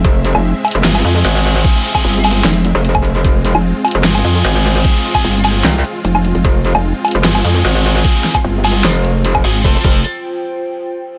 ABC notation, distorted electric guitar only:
X:1
M:4/4
L:1/16
Q:1/4=150
K:Fm
V:1 name="Distorted electric guitar"
z8 [CFA]2 [CFA]6- | [CFA]3 [CFA]2 z [CFA]2 z8 | z8 [CFA]2 [CFA]6- | [CFA]3 [CFA]2 z [CFA]2 z8 |
z8 [CFA]2 [CFA]6- | [CFA]3 z3 [CFA]2 z6 [CFA] z | [CF=A] z [CFA]2 z12 |]